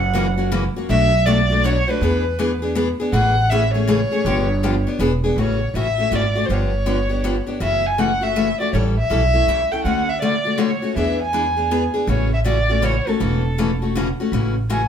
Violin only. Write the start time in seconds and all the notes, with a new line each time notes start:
Already playing: F#5
0.91 E5
1.26 D5
1.65 C#5
1.90 B4
3.14 F#5
3.50 E5
3.73 C#5
5.41 C#5
5.78 E5
6.15 D5
6.46 C5
6.54 C#5
7.63 E5
7.86 G#5
8.00 F#5
8.23 E5
8.60 D5
8.73 C#5
8.99 E5
9.72 G5
9.85 F#5
10.09 E5
10.22 D5
10.59 C#5
10.97 E5
11.22 G#5
12.10 C#5
12.34 E5
12.47 D5
12.84 C#5
13.09 A4
14.70 G#5